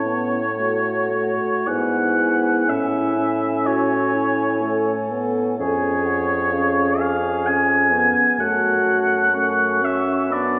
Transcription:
0, 0, Header, 1, 6, 480
1, 0, Start_track
1, 0, Key_signature, 3, "major"
1, 0, Tempo, 1022147
1, 271, Tempo, 1094891
1, 751, Tempo, 998336
1, 1238, Time_signature, 3, 2, 24, 8
1, 1711, Tempo, 966184
1, 2671, Key_signature, 3, "minor"
1, 2671, Tempo, 930233
1, 4111, Tempo, 964630
1, 5206, End_track
2, 0, Start_track
2, 0, Title_t, "Flute"
2, 0, Program_c, 0, 73
2, 0, Note_on_c, 0, 81, 36
2, 131, Note_off_c, 0, 81, 0
2, 272, Note_on_c, 0, 78, 36
2, 755, Note_on_c, 0, 80, 42
2, 762, Note_off_c, 0, 78, 0
2, 2666, Note_off_c, 0, 80, 0
2, 2669, Note_on_c, 0, 80, 51
2, 2908, Note_on_c, 0, 78, 46
2, 2916, Note_off_c, 0, 80, 0
2, 3150, Note_on_c, 0, 77, 50
2, 3157, Note_off_c, 0, 78, 0
2, 3387, Note_on_c, 0, 80, 48
2, 3394, Note_off_c, 0, 77, 0
2, 3978, Note_off_c, 0, 80, 0
2, 4111, Note_on_c, 0, 81, 48
2, 4582, Note_on_c, 0, 85, 46
2, 4590, Note_off_c, 0, 81, 0
2, 5059, Note_off_c, 0, 85, 0
2, 5062, Note_on_c, 0, 83, 46
2, 5206, Note_off_c, 0, 83, 0
2, 5206, End_track
3, 0, Start_track
3, 0, Title_t, "Oboe"
3, 0, Program_c, 1, 68
3, 0, Note_on_c, 1, 73, 57
3, 750, Note_on_c, 1, 78, 55
3, 758, Note_off_c, 1, 73, 0
3, 1241, Note_on_c, 1, 76, 51
3, 1248, Note_off_c, 1, 78, 0
3, 1707, Note_on_c, 1, 73, 57
3, 1714, Note_off_c, 1, 76, 0
3, 2429, Note_off_c, 1, 73, 0
3, 2668, Note_on_c, 1, 73, 69
3, 3389, Note_on_c, 1, 77, 66
3, 3397, Note_off_c, 1, 73, 0
3, 3632, Note_on_c, 1, 80, 69
3, 3639, Note_off_c, 1, 77, 0
3, 4112, Note_off_c, 1, 80, 0
3, 4115, Note_on_c, 1, 78, 77
3, 4833, Note_on_c, 1, 76, 65
3, 4841, Note_off_c, 1, 78, 0
3, 5073, Note_on_c, 1, 74, 64
3, 5081, Note_off_c, 1, 76, 0
3, 5206, Note_off_c, 1, 74, 0
3, 5206, End_track
4, 0, Start_track
4, 0, Title_t, "Clarinet"
4, 0, Program_c, 2, 71
4, 0, Note_on_c, 2, 64, 40
4, 129, Note_off_c, 2, 64, 0
4, 270, Note_on_c, 2, 66, 36
4, 748, Note_on_c, 2, 64, 37
4, 755, Note_off_c, 2, 66, 0
4, 1231, Note_off_c, 2, 64, 0
4, 1234, Note_on_c, 2, 64, 40
4, 1713, Note_on_c, 2, 66, 37
4, 1720, Note_off_c, 2, 64, 0
4, 1945, Note_off_c, 2, 66, 0
4, 1948, Note_on_c, 2, 64, 43
4, 2188, Note_on_c, 2, 69, 46
4, 2196, Note_off_c, 2, 64, 0
4, 2664, Note_off_c, 2, 69, 0
4, 2667, Note_on_c, 2, 68, 45
4, 3141, Note_off_c, 2, 68, 0
4, 3149, Note_on_c, 2, 68, 42
4, 3961, Note_off_c, 2, 68, 0
4, 4110, Note_on_c, 2, 66, 44
4, 4564, Note_off_c, 2, 66, 0
4, 4584, Note_on_c, 2, 61, 47
4, 5068, Note_on_c, 2, 62, 47
4, 5075, Note_off_c, 2, 61, 0
4, 5206, Note_off_c, 2, 62, 0
4, 5206, End_track
5, 0, Start_track
5, 0, Title_t, "French horn"
5, 0, Program_c, 3, 60
5, 27, Note_on_c, 3, 59, 38
5, 182, Note_off_c, 3, 59, 0
5, 269, Note_on_c, 3, 57, 38
5, 492, Note_off_c, 3, 57, 0
5, 506, Note_on_c, 3, 57, 39
5, 751, Note_on_c, 3, 59, 40
5, 758, Note_off_c, 3, 57, 0
5, 1237, Note_on_c, 3, 61, 44
5, 1244, Note_off_c, 3, 59, 0
5, 1470, Note_off_c, 3, 61, 0
5, 1473, Note_on_c, 3, 61, 45
5, 2184, Note_on_c, 3, 57, 42
5, 2191, Note_off_c, 3, 61, 0
5, 2430, Note_on_c, 3, 59, 48
5, 2437, Note_off_c, 3, 57, 0
5, 2663, Note_off_c, 3, 59, 0
5, 2666, Note_on_c, 3, 61, 44
5, 3140, Note_off_c, 3, 61, 0
5, 3148, Note_on_c, 3, 61, 44
5, 3487, Note_off_c, 3, 61, 0
5, 3622, Note_on_c, 3, 61, 53
5, 3864, Note_on_c, 3, 59, 49
5, 3871, Note_off_c, 3, 61, 0
5, 4109, Note_on_c, 3, 57, 42
5, 4117, Note_off_c, 3, 59, 0
5, 4578, Note_off_c, 3, 57, 0
5, 4581, Note_on_c, 3, 57, 48
5, 4823, Note_on_c, 3, 61, 47
5, 4831, Note_off_c, 3, 57, 0
5, 5058, Note_off_c, 3, 61, 0
5, 5061, Note_on_c, 3, 59, 45
5, 5206, Note_off_c, 3, 59, 0
5, 5206, End_track
6, 0, Start_track
6, 0, Title_t, "Bassoon"
6, 0, Program_c, 4, 70
6, 0, Note_on_c, 4, 45, 44
6, 604, Note_off_c, 4, 45, 0
6, 754, Note_on_c, 4, 44, 47
6, 1240, Note_on_c, 4, 45, 46
6, 1247, Note_off_c, 4, 44, 0
6, 2666, Note_off_c, 4, 45, 0
6, 2669, Note_on_c, 4, 41, 50
6, 3958, Note_off_c, 4, 41, 0
6, 4110, Note_on_c, 4, 42, 50
6, 5206, Note_off_c, 4, 42, 0
6, 5206, End_track
0, 0, End_of_file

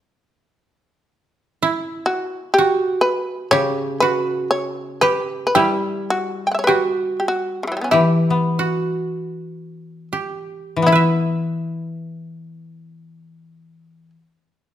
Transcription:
0, 0, Header, 1, 4, 480
1, 0, Start_track
1, 0, Tempo, 933126
1, 831, Time_signature, 4, 2, 24, 8
1, 1317, Tempo, 977199
1, 2277, Tempo, 1056338
1, 2757, Tempo, 1132075
1, 3237, Tempo, 1234568
1, 3717, Tempo, 1428571
1, 4197, Tempo, 1511335
1, 4677, Tempo, 1418440
1, 5985, End_track
2, 0, Start_track
2, 0, Title_t, "Shamisen"
2, 0, Program_c, 0, 106
2, 1059, Note_on_c, 0, 66, 53
2, 1292, Note_off_c, 0, 66, 0
2, 1305, Note_on_c, 0, 67, 58
2, 1529, Note_off_c, 0, 67, 0
2, 1539, Note_on_c, 0, 71, 60
2, 1767, Note_off_c, 0, 71, 0
2, 1784, Note_on_c, 0, 73, 74
2, 2012, Note_off_c, 0, 73, 0
2, 2026, Note_on_c, 0, 71, 71
2, 2257, Note_off_c, 0, 71, 0
2, 2273, Note_on_c, 0, 73, 66
2, 2493, Note_off_c, 0, 73, 0
2, 2504, Note_on_c, 0, 71, 61
2, 2702, Note_off_c, 0, 71, 0
2, 2710, Note_on_c, 0, 71, 42
2, 2747, Note_on_c, 0, 67, 57
2, 2752, Note_off_c, 0, 71, 0
2, 2973, Note_off_c, 0, 67, 0
2, 2983, Note_on_c, 0, 66, 54
2, 3138, Note_on_c, 0, 79, 23
2, 3156, Note_off_c, 0, 79, 0
2, 3157, Note_on_c, 0, 78, 24
2, 3168, Note_off_c, 0, 78, 0
2, 3170, Note_on_c, 0, 76, 29
2, 3186, Note_off_c, 0, 76, 0
2, 3188, Note_on_c, 0, 73, 31
2, 3208, Note_off_c, 0, 66, 0
2, 3209, Note_on_c, 0, 71, 34
2, 3224, Note_on_c, 0, 67, 52
2, 3264, Note_off_c, 0, 73, 0
2, 3282, Note_off_c, 0, 71, 0
2, 3414, Note_off_c, 0, 67, 0
2, 3429, Note_on_c, 0, 67, 30
2, 3460, Note_off_c, 0, 67, 0
2, 3462, Note_on_c, 0, 66, 47
2, 3598, Note_on_c, 0, 49, 21
2, 3613, Note_off_c, 0, 49, 0
2, 3615, Note_on_c, 0, 52, 23
2, 3630, Note_off_c, 0, 66, 0
2, 3631, Note_on_c, 0, 54, 24
2, 3649, Note_off_c, 0, 54, 0
2, 3651, Note_on_c, 0, 55, 24
2, 3668, Note_off_c, 0, 55, 0
2, 3669, Note_on_c, 0, 59, 26
2, 3680, Note_on_c, 0, 61, 29
2, 3693, Note_off_c, 0, 52, 0
2, 3706, Note_off_c, 0, 61, 0
2, 3707, Note_on_c, 0, 64, 39
2, 3745, Note_off_c, 0, 59, 0
2, 4423, Note_off_c, 0, 64, 0
2, 4673, Note_on_c, 0, 64, 43
2, 5767, Note_off_c, 0, 64, 0
2, 5985, End_track
3, 0, Start_track
3, 0, Title_t, "Koto"
3, 0, Program_c, 1, 107
3, 836, Note_on_c, 1, 64, 57
3, 1329, Note_on_c, 1, 66, 51
3, 1791, Note_on_c, 1, 67, 50
3, 1821, Note_off_c, 1, 66, 0
3, 1970, Note_off_c, 1, 64, 0
3, 2036, Note_on_c, 1, 66, 49
3, 2065, Note_off_c, 1, 67, 0
3, 2508, Note_on_c, 1, 67, 54
3, 2535, Note_off_c, 1, 66, 0
3, 2748, Note_on_c, 1, 64, 55
3, 3229, Note_on_c, 1, 66, 48
3, 3253, Note_off_c, 1, 67, 0
3, 3669, Note_off_c, 1, 64, 0
3, 3708, Note_on_c, 1, 67, 48
3, 3730, Note_off_c, 1, 66, 0
3, 3936, Note_on_c, 1, 66, 40
3, 3957, Note_off_c, 1, 67, 0
3, 4438, Note_on_c, 1, 67, 34
3, 4457, Note_off_c, 1, 66, 0
3, 4677, Note_on_c, 1, 64, 37
3, 4693, Note_on_c, 1, 71, 39
3, 4703, Note_on_c, 1, 76, 39
3, 5113, Note_off_c, 1, 67, 0
3, 5771, Note_off_c, 1, 64, 0
3, 5787, Note_off_c, 1, 71, 0
3, 5798, Note_off_c, 1, 76, 0
3, 5985, End_track
4, 0, Start_track
4, 0, Title_t, "Koto"
4, 0, Program_c, 2, 107
4, 1785, Note_on_c, 2, 49, 44
4, 2753, Note_on_c, 2, 55, 38
4, 2755, Note_off_c, 2, 49, 0
4, 3715, Note_on_c, 2, 52, 36
4, 3840, Note_on_c, 2, 59, 21
4, 4054, Note_off_c, 2, 55, 0
4, 4637, Note_off_c, 2, 52, 0
4, 4641, Note_on_c, 2, 52, 29
4, 4656, Note_off_c, 2, 59, 0
4, 4660, Note_on_c, 2, 59, 29
4, 4674, Note_on_c, 2, 64, 31
4, 5767, Note_off_c, 2, 59, 0
4, 5782, Note_off_c, 2, 64, 0
4, 5783, Note_off_c, 2, 52, 0
4, 5985, End_track
0, 0, End_of_file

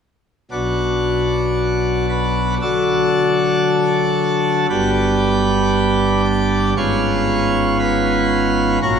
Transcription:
0, 0, Header, 1, 2, 480
1, 0, Start_track
1, 0, Key_signature, 2, "minor"
1, 0, Tempo, 1047120
1, 237, Time_signature, 4, 2, 24, 8
1, 2154, Tempo, 1029160
1, 4157, End_track
2, 0, Start_track
2, 0, Title_t, "Pipe organ"
2, 0, Program_c, 0, 19
2, 235, Note_on_c, 0, 54, 37
2, 236, Note_on_c, 0, 35, 52
2, 236, Note_on_c, 0, 62, 42
2, 236, Note_on_c, 0, 66, 78
2, 237, Note_on_c, 0, 47, 54
2, 941, Note_off_c, 0, 66, 0
2, 960, Note_on_c, 0, 71, 85
2, 1164, Note_off_c, 0, 71, 0
2, 1181, Note_off_c, 0, 35, 0
2, 1181, Note_off_c, 0, 47, 0
2, 1181, Note_off_c, 0, 54, 0
2, 1181, Note_off_c, 0, 62, 0
2, 1200, Note_on_c, 0, 62, 41
2, 1200, Note_on_c, 0, 69, 88
2, 1201, Note_on_c, 0, 50, 47
2, 1201, Note_on_c, 0, 54, 44
2, 1201, Note_on_c, 0, 66, 46
2, 2137, Note_off_c, 0, 62, 0
2, 2137, Note_off_c, 0, 69, 0
2, 2138, Note_off_c, 0, 50, 0
2, 2138, Note_off_c, 0, 54, 0
2, 2138, Note_off_c, 0, 66, 0
2, 2154, Note_on_c, 0, 43, 57
2, 2155, Note_on_c, 0, 59, 46
2, 2155, Note_on_c, 0, 62, 44
2, 2156, Note_on_c, 0, 31, 53
2, 2156, Note_on_c, 0, 67, 44
2, 2156, Note_on_c, 0, 71, 90
2, 2861, Note_off_c, 0, 71, 0
2, 2882, Note_on_c, 0, 74, 94
2, 3086, Note_off_c, 0, 74, 0
2, 3102, Note_off_c, 0, 43, 0
2, 3102, Note_off_c, 0, 59, 0
2, 3102, Note_off_c, 0, 62, 0
2, 3102, Note_off_c, 0, 67, 0
2, 3103, Note_off_c, 0, 31, 0
2, 3120, Note_on_c, 0, 32, 62
2, 3120, Note_on_c, 0, 44, 61
2, 3120, Note_on_c, 0, 59, 44
2, 3120, Note_on_c, 0, 73, 93
2, 3121, Note_on_c, 0, 61, 47
2, 3121, Note_on_c, 0, 65, 42
2, 3586, Note_off_c, 0, 73, 0
2, 3599, Note_on_c, 0, 71, 98
2, 4058, Note_off_c, 0, 32, 0
2, 4058, Note_off_c, 0, 44, 0
2, 4058, Note_off_c, 0, 59, 0
2, 4058, Note_off_c, 0, 61, 0
2, 4058, Note_off_c, 0, 65, 0
2, 4062, Note_off_c, 0, 71, 0
2, 4077, Note_on_c, 0, 61, 49
2, 4078, Note_on_c, 0, 46, 60
2, 4078, Note_on_c, 0, 58, 57
2, 4078, Note_on_c, 0, 70, 106
2, 4079, Note_on_c, 0, 34, 62
2, 4079, Note_on_c, 0, 66, 51
2, 4157, Note_off_c, 0, 34, 0
2, 4157, Note_off_c, 0, 46, 0
2, 4157, Note_off_c, 0, 58, 0
2, 4157, Note_off_c, 0, 61, 0
2, 4157, Note_off_c, 0, 66, 0
2, 4157, Note_off_c, 0, 70, 0
2, 4157, End_track
0, 0, End_of_file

